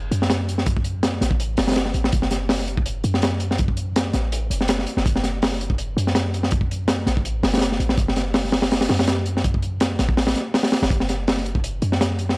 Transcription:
0.00 0.10 F#1 loud
0.11 1.20 F#2 medium
0.11 closed hi-hat medium
0.22 snare medium
0.30 snare loud
0.30 closed hi-hat medium
0.49 closed hi-hat medium
0.58 snare soft
0.66 kick loud
0.66 closed hi-hat medium
0.77 kick loud
0.84 closed hi-hat medium
1.03 snare loud
1.03 closed hi-hat medium
1.21 1.56 A1 loud
1.21 snare medium
1.21 closed hi-hat medium
1.31 kick medium
1.40 closed hi-hat medium
1.57 1.93 F#1 medium
1.57 snare loud
1.57 open hi-hat medium
1.67 snare medium
1.67 open hi-hat medium
1.72 snare medium
1.72 open hi-hat medium
1.76 snare loud
1.76 closed hi-hat medium
1.85 snare medium
1.94 2.11 A1 medium
1.94 closed hi-hat medium
2.04 snare medium
2.12 3.03 F#1 medium
2.12 kick loud
2.12 closed hi-hat medium
2.22 snare medium
2.31 snare medium
2.31 closed hi-hat medium
2.49 snare loud
2.49 open hi-hat medium
2.59 snare soft
2.68 closed hi-hat medium
2.77 kick loud
2.86 closed hi-hat medium
3.04 4.12 F#2 loud
3.04 closed hi-hat medium
3.14 snare soft
3.22 snare loud
3.22 closed hi-hat medium
3.40 closed hi-hat medium
3.51 snare medium
3.58 kick loud
3.58 closed hi-hat medium
3.68 kick medium
3.77 closed hi-hat medium
3.96 snare loud
3.96 closed hi-hat medium
4.13 4.49 A1 medium
4.13 snare soft
4.13 closed hi-hat medium
4.32 closed hi-hat medium
4.50 4.86 F#1 medium
4.50 closed hi-hat medium
4.61 snare soft
4.68 snare loud
4.68 closed hi-hat loud
4.79 snare soft
4.87 closed hi-hat medium
4.97 5.04 F#1 medium
4.97 snare medium
5.06 5.96 F#1 loud
5.06 kick loud
5.06 closed hi-hat medium
5.16 snare medium
5.23 snare soft
5.23 closed hi-hat medium
5.42 snare loud
5.42 open hi-hat medium
5.52 snare soft
5.61 closed hi-hat medium
5.70 kick medium
5.78 closed hi-hat medium
5.97 7.05 F#2 loud
5.97 closed hi-hat medium
6.07 snare soft
6.15 snare loud
6.15 closed hi-hat medium
6.34 closed hi-hat medium
6.43 snare soft
6.51 kick loud
6.51 closed hi-hat medium
6.61 kick medium
6.71 closed hi-hat medium
6.88 snare loud
6.88 closed hi-hat medium
7.06 7.42 A1 loud
7.06 snare medium
7.06 closed hi-hat medium
7.17 kick medium
7.25 closed hi-hat loud
7.43 7.78 F#1 medium
7.43 snare loud
7.43 open hi-hat medium
7.54 snare medium
7.54 open hi-hat medium
7.57 snare medium
7.57 open hi-hat medium
7.61 snare loud
7.61 closed hi-hat loud
7.72 snare medium
7.80 7.96 A1 medium
7.80 closed hi-hat medium
7.89 snare medium
7.97 8.88 F#1 loud
7.97 kick loud
7.97 closed hi-hat medium
8.08 snare medium
8.16 snare medium
8.16 closed hi-hat medium
8.34 snare loud
8.34 open hi-hat medium
8.45 snare soft
8.52 snare loud
8.52 open hi-hat medium
8.62 snare loud
8.62 open hi-hat medium
8.71 snare loud
8.71 open hi-hat medium
8.81 snare loud
8.81 open hi-hat medium
8.89 9.98 F#2 loud
8.89 snare loud
8.89 open hi-hat medium
8.99 snare loud
8.99 open hi-hat medium
9.07 snare loud
9.07 closed hi-hat loud
9.26 closed hi-hat medium
9.37 snare soft
9.44 kick loud
9.44 closed hi-hat medium
9.54 kick medium
9.62 closed hi-hat medium
9.80 snare loud
9.80 closed hi-hat medium
9.99 10.34 A1 loud
9.99 snare medium
9.99 closed hi-hat medium
10.09 kick medium
10.17 snare loud
10.17 open hi-hat medium
10.27 snare loud
10.27 open hi-hat medium
10.35 snare soft
10.35 closed hi-hat medium
10.54 snare loud
10.54 open hi-hat medium
10.63 snare loud
10.63 open hi-hat medium
10.72 snare loud
10.72 open hi-hat medium
10.82 10.90 F#1 loud
10.82 snare loud
10.82 open hi-hat medium
10.90 11.81 F#1 loud
10.90 kick loud
10.90 closed hi-hat medium
11.00 snare medium
11.09 snare soft
11.09 closed hi-hat medium
11.27 snare loud
11.27 open hi-hat medium
11.37 snare soft
11.46 closed hi-hat medium
11.55 kick medium
11.64 closed hi-hat medium
11.82 12.37 F#2 medium
11.82 closed hi-hat medium
11.92 snare soft
12.01 snare loud
12.01 closed hi-hat medium
12.19 closed hi-hat medium
12.29 snare medium

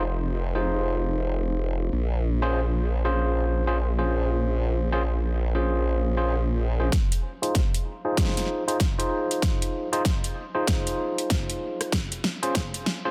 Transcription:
0.00 1.90 F1 medium
0.55 1.91 D#4 medium
0.55 1.91 F4 medium
0.55 1.91 G#4 medium
0.55 1.91 C5 medium
1.92 6.90 A#1 medium
2.42 2.59 C#4 medium
2.42 2.59 F4 medium
2.42 2.59 G#4 medium
2.42 2.59 C5 loud
3.05 3.63 C#4 medium
3.05 3.63 F4 medium
3.05 3.63 G#4 medium
3.05 3.63 C5 loud
3.67 3.77 C#4 medium
3.67 3.77 F4 medium
3.67 3.77 G#4 medium
3.67 3.77 C5 medium
3.99 4.88 C#4 medium
3.99 4.88 F4 medium
3.99 4.88 G#4 medium
3.99 4.88 C5 medium
4.92 5.02 C#4 medium
4.92 5.02 F4 medium
4.92 5.02 G#4 medium
4.92 5.02 C5 loud
5.55 6.14 C#4 medium
5.55 6.14 F4 medium
5.55 6.14 G#4 medium
5.55 6.14 C5 medium
6.17 6.34 C#4 medium
6.17 6.34 F4 medium
6.17 6.34 G#4 medium
6.17 6.34 C5 medium
6.80 6.90 C#4 medium
6.80 6.89 F4 medium
6.80 6.89 G#4 medium
6.80 6.89 C5 medium
6.92 kick medium
6.92 snare soft
6.92 closed hi-hat medium
7.12 closed hi-hat soft
7.42 7.59 D#4 medium
7.42 7.59 F4 medium
7.42 7.59 G#4 medium
7.42 7.59 C5 loud
7.42 closed hi-hat soft
7.55 kick medium
7.55 snare soft
7.55 closed hi-hat medium
7.74 closed hi-hat medium
8.05 8.63 D#4 medium
8.05 8.63 F4 medium
8.05 8.63 G#4 medium
8.05 8.63 C5 loud
8.17 kick medium
8.17 snare soft
8.17 closed hi-hat medium
8.25 snare soft
8.29 snare soft
8.37 snare soft
8.37 closed hi-hat medium
8.39 snare soft
8.45 snare soft
8.68 8.77 D#4 medium
8.68 8.77 F4 medium
8.68 8.77 G#4 medium
8.68 8.77 C5 medium
8.68 closed hi-hat soft
8.80 kick medium
8.80 snare medium
8.80 closed hi-hat medium
8.98 9.88 D#4 medium
8.98 9.88 F4 medium
8.98 9.88 G#4 medium
8.98 9.88 C5 medium
8.98 closed hi-hat medium
9.31 closed hi-hat soft
9.42 kick medium
9.42 snare medium
9.42 closed hi-hat medium
9.62 closed hi-hat medium
9.92 10.02 D#4 medium
9.92 10.02 F4 medium
9.92 10.02 G#4 medium
9.92 10.02 C5 loud
9.92 closed hi-hat soft
10.05 kick medium
10.05 snare medium
10.05 closed hi-hat medium
10.24 closed hi-hat medium
10.55 11.91 D#4 medium
10.55 11.91 F4 medium
10.55 11.91 G#4 medium
10.55 11.91 C5 medium
10.67 kick loud
10.67 snare medium
10.67 closed hi-hat medium
10.87 closed hi-hat medium
11.18 closed hi-hat soft
11.30 kick medium
11.30 snare medium
11.30 closed hi-hat medium
11.50 closed hi-hat medium
11.81 cross-stick medium
11.81 closed hi-hat soft
11.92 kick medium
11.92 snare medium
11.92 closed hi-hat medium
12.12 closed hi-hat medium
12.24 snare medium
12.43 12.59 C#4 medium
12.43 12.59 F4 medium
12.43 12.59 G#4 medium
12.43 12.59 C5 medium
12.43 closed hi-hat soft
12.55 kick medium
12.55 snare medium
12.55 closed hi-hat medium
12.74 closed hi-hat medium
12.86 snare medium
13.05 13.11 C#4 medium
13.05 13.11 F4 medium
13.05 13.11 G#4 medium
13.05 13.11 C5 loud

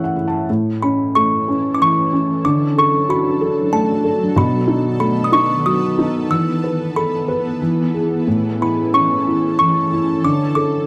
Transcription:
0.00 0.45 A2 medium
0.00 0.47 E3 soft
0.00 0.45 C#4 soft
0.00 0.16 E4 soft
0.00 0.50 C#5 medium
0.00 0.50 E5 medium
0.00 0.04 F#5 medium
0.00 0.25 F#5 medium
0.16 0.48 E4 soft
0.28 0.48 A5 medium
0.49 2.41 A2 medium
0.49 2.43 E3 medium
0.49 2.43 C#4 medium
0.49 7.57 A4 medium
0.82 1.47 C#4 soft
0.82 1.13 B5 medium
1.15 2.41 A3 soft
1.15 1.75 C#6 medium
1.48 2.12 C#4 soft
1.75 1.81 D6 medium
1.81 2.43 E3 soft
1.81 2.47 C#6 medium
2.13 2.44 C#4 soft
2.43 4.32 D3 medium
2.43 4.33 F#3 medium
2.43 4.33 D4 medium
2.43 2.77 D6 medium
2.78 3.40 A4 soft
2.78 2.92 C#6 medium
3.09 4.32 F#4 soft
3.09 3.75 B5 medium
3.41 4.03 A4 medium
3.72 4.34 A3 medium
3.72 4.17 A5 medium
4.04 4.35 A4 medium
4.35 6.26 B2 medium
4.35 6.27 D#3 medium
4.35 6.27 B3 medium
4.35 4.96 B5 medium
4.68 5.31 D#4 medium
5.00 6.26 A3 medium
5.00 5.23 B5 medium
5.24 5.31 D#6 medium
5.32 5.97 D#4 medium
5.32 5.66 C#6 medium
5.66 6.29 F#3 medium
5.66 6.32 D#6 medium
5.99 6.30 D#4 soft
6.29 10.20 E3 medium
6.29 7.58 E3 medium
6.29 7.59 B3 medium
6.29 6.92 E6 medium
6.64 7.27 B4 soft
6.96 7.60 A4 medium
6.96 7.91 B5 medium
7.28 7.60 B4 medium
7.62 8.25 E3 medium
7.94 8.26 G#4 medium
8.24 10.20 A2 medium
8.24 10.21 C#4 medium
8.24 10.87 A4 medium
8.61 9.25 E4 soft
8.61 8.77 B5 medium
8.94 10.20 C#4 soft
8.94 9.58 C#6 medium
9.27 9.91 E4 soft
9.59 10.22 E3 medium
9.59 10.26 C#6 medium
9.93 10.24 E4 soft
10.23 10.87 D3 medium
10.23 10.87 F#3 medium
10.23 10.87 D4 medium
10.23 10.39 D6 medium
10.55 10.87 A4 soft
10.55 10.85 D6 medium

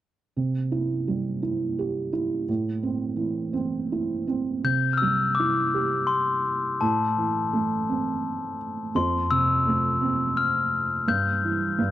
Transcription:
0.37 2.45 C3 medium
0.72 1.41 E4 soft
1.08 2.45 G3 soft
1.42 2.11 E4 soft
1.79 2.47 G4 soft
2.13 2.47 E4 soft
2.48 4.61 A2 medium
2.83 3.52 C4 soft
3.16 4.59 E3 soft
3.53 4.26 C4 soft
3.92 4.63 E4 soft
4.27 4.63 C4 medium
4.64 6.77 C3 medium
4.64 4.95 G6 medium
4.93 5.01 F6 medium
4.98 5.37 E6 medium
5.02 6.42 G3 soft
5.35 6.11 D6 medium
5.40 6.78 E4 soft
5.74 6.78 G4 soft
6.07 6.82 C6 medium
6.81 8.90 A2 medium
6.81 8.55 A5 medium
7.17 8.55 E3 soft
7.53 8.91 A3 soft
7.89 8.92 C4 soft
8.95 11.04 F2 medium
8.95 9.32 C6 medium
9.31 10.68 C3 soft
9.31 10.40 E6 medium
9.67 11.04 A3 soft
10.01 11.04 C4 soft
10.37 11.10 F6 medium
11.08 11.77 G2 medium
11.08 11.91 G6 medium
11.44 11.78 E3 soft
11.79 11.91 G2 medium

